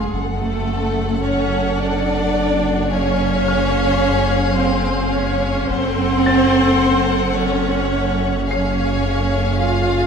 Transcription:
Already playing: viola section G#3, violin section G#4, grand piano C6
0.12 double bass section F#1, sub bass F#1, cello section F#2, violin section A4 F#5
0.40 viola section A3, violin section A4
1.23 viola section C#4, violin section C#5
1.80 viola section D4, violin section D5
2.90 viola section C#4, violin section G#4 C#5 F5
3.48 grand piano F6
4.57 viola section C4, violin section C5
5.13 viola section C#4, violin section C#5
5.69 sub bass F#1, double bass section F#1, cello section F#2, viola section C4, violin section A4 C5 F#5
6.26 grand piano A6
7.36 viola section C#4, violin section C#5
8.48 viola section C#4, violin section G#4 C#5 F5, grand piano C7
9.62 viola section F4, violin section F5

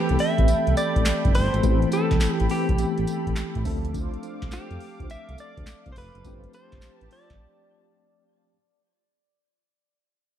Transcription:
Already playing: tine electric piano E3 A3 B3 C4 G4, clean electric guitar G4, analog synth pad A4 G5 B5
0.09 analog synth bass C2, closed hi-hat
0.19 clean electric guitar E5, open hi-hat
0.38 analog synth bass A1, analog polysynth C4 G4 B4, kick, closed hi-hat
0.48 analog synth bass C2, closed hi-hat, tambourine
0.67 analog synth bass C2, closed hi-hat
0.77 clean electric guitar D5, closed hi-hat, tambourine
0.96 analog synth bass A1, kick, closed hi-hat
1.05 snare, clap, closed hi-hat, tambourine
1.25 analog synth bass G1, kick, closed hi-hat
1.35 analog synth bass G1, clean electric guitar C5, open hi-hat, tambourine
1.54 analog synth bass G#1, closed hi-hat
1.63 analog synth bass A1, tine electric piano E3 A3 B3 C4 E4, analog polysynth C4 G4 B4, kick, closed hi-hat, tambourine
1.82 closed hi-hat
1.92 analog polysynth C4 G4 B4, clean electric guitar A4, closed hi-hat, tambourine
2.11 analog synth bass C2, kick, snare, closed hi-hat
2.21 snare, clap, closed hi-hat, tambourine
2.34 clean electric guitar G4
2.40 analog synth bass A1, closed hi-hat
2.50 analog polysynth C4 G4 B4, clean electric guitar G4, open hi-hat
2.69 analog synth bass C2, kick, closed hi-hat
2.78 analog synth bass A1, tine electric piano E3 A3 B3 C4 G4, closed hi-hat, tambourine
2.98 analog synth bass A1, closed hi-hat
3.07 closed hi-hat, tambourine
3.27 analog synth bass A1, kick, closed hi-hat
3.36 snare, clap, closed hi-hat, tambourine
3.55 analog synth bass A2, kick, closed hi-hat
3.64 analog synth bass D2, tine electric piano F3 A3 C4 D4 A4, analog synth pad F5 D6, kick, open hi-hat, tambourine
3.85 closed hi-hat
3.94 analog polysynth D4 F4 C5, kick, closed hi-hat, tambourine
4.14 closed hi-hat
4.22 analog polysynth D4 F4 C5, closed hi-hat, tambourine
4.42 analog synth bass C2, kick, snare, closed hi-hat
4.51 analog polysynth D4 F4 C5, clean electric guitar G4, snare, clap, closed hi-hat, tambourine
4.71 analog synth bass F2, closed hi-hat
4.80 open hi-hat
4.99 analog synth bass D2, analog polysynth D4 F4 C5, kick, closed hi-hat
5.10 analog synth bass C2, clean electric guitar E5, closed hi-hat, tambourine
5.29 analog synth bass C2, closed hi-hat
5.38 clean electric guitar D5, closed hi-hat, tambourine
5.57 analog synth bass D2, kick, closed hi-hat
5.66 snare, clap, closed hi-hat, tambourine
5.86 analog synth bass C2, kick, closed hi-hat
5.92 analog synth bass F1, clean electric guitar C5, open hi-hat, tambourine
5.98 clean electric guitar B4
6.15 analog synth bass F#1, closed hi-hat
6.24 analog synth bass G1, tine electric piano F3 A3 C4 D4 G4, analog polysynth F4 A4 C5, analog synth pad G4 A5, kick, closed hi-hat, tambourine
6.44 closed hi-hat
6.53 analog polysynth F4 A4 C5, clean electric guitar C5, closed hi-hat, tambourine
6.72 analog synth bass G1, kick, snare, closed hi-hat
6.82 snare, clap, closed hi-hat, tambourine
6.98 analog synth bass A1, clean electric guitar B4, closed hi-hat
7.11 analog polysynth F4 A4 C5, clean electric guitar D5, open hi-hat
7.30 analog synth bass G1, kick, snare, closed hi-hat

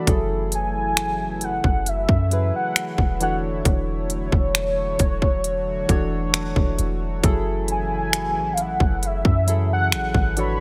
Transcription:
0.06 808-style bass F#1, analog synth pad C#3 E3 F#3 A3 E4, synth keys F#3 E4 G#4 A4, kick, closed hi-hat
0.52 soft synth lead G#5, closed hi-hat
0.97 finger snap, closed hi-hat
1.41 soft synth lead F#5, closed hi-hat
1.64 808-style bass F#1, kick
1.86 soft synth lead E5, closed hi-hat
2.09 808-style bass F#2, kick
2.31 synth keys F#3 E4 G#4 B4, closed hi-hat
2.56 soft synth lead F#5
2.76 finger snap, closed hi-hat
2.98 808-style bass E1, kick
3.20 analog synth pad D3 C#5, synth keys E3 D4 F#4 A4 C#5, soft synth lead F#5, closed hi-hat
3.65 808-style bass E1, soft synth lead C#5, kick, closed hi-hat
4.10 closed hi-hat
4.32 808-style bass E1, kick
4.55 finger snap, closed hi-hat
4.99 808-style bass E1, analog synth pad F#4, kick, closed hi-hat
5.22 kick
5.44 closed hi-hat
5.88 808-style bass E1, synth keys E3 D4 F#4 A4 C#5, kick, closed hi-hat
6.34 finger snap, closed hi-hat
6.56 808-style bass E1, kick
6.79 808-style bass E1, closed hi-hat
7.23 808-style bass F#1, analog synth pad C#3 E3 E4, synth keys F#3 E4 G#4 A4, kick, closed hi-hat
7.68 soft synth lead G#5, closed hi-hat
8.13 finger snap, closed hi-hat
8.36 808-style bass A1
8.53 soft synth lead F5
8.57 soft synth lead F#5, closed hi-hat
8.80 808-style bass F#1, kick
9.03 soft synth lead E5, closed hi-hat
9.25 808-style bass F#2, kick
9.47 synth keys F#3 E4 G#4 A4, closed hi-hat
9.73 soft synth lead F#5
9.92 808-style bass A1, finger snap, closed hi-hat
10.14 808-style bass G#1, kick
10.36 analog synth pad D3 C#5, synth keys E3 D4 F#4 A4 C#5, soft synth lead B5, closed hi-hat

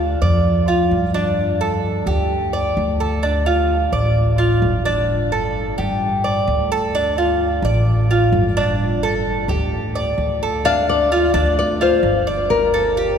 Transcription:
Already playing: upright bass D2, cuban tres F4
0.22 upright bass F2, cuban tres D5
0.68 cuban tres F4
0.91 upright bass G2
1.14 cuban tres D4
1.61 cuban tres A4
2.06 upright bass D2, cuban tres G4
2.53 cuban tres D5
2.77 upright bass D2
3.00 cuban tres A4
3.23 cuban tres D4
3.46 cuban tres F4
3.92 upright bass A1, cuban tres D5
4.38 cuban tres F4
4.62 upright bass G1
4.85 cuban tres D4
5.32 cuban tres A4
5.78 upright bass G2, cuban tres G4
6.24 cuban tres D5
6.48 upright bass D2
6.72 cuban tres A4
6.95 cuban tres D4
7.18 cuban tres F4
7.62 upright bass A1, cuban tres D5
8.11 cuban tres F4
8.32 upright bass G1
8.57 cuban tres D4
9.03 cuban tres A4
9.48 upright bass D2, cuban tres G4
9.95 cuban tres D5
10.18 upright bass D2
10.43 cuban tres A4
10.65 cuban tres D4, nylon-string guitar F5
10.89 nylon-string guitar D5
11.12 cuban tres F4
11.34 upright bass D2, cuban tres D4
11.59 nylon-string guitar D5
11.81 cuban tres F4, nylon-string guitar C5
12.03 upright bass G1
12.27 cuban tres D5
12.50 nylon-string guitar A#4
12.74 cuban tres A4
12.97 cuban tres G4

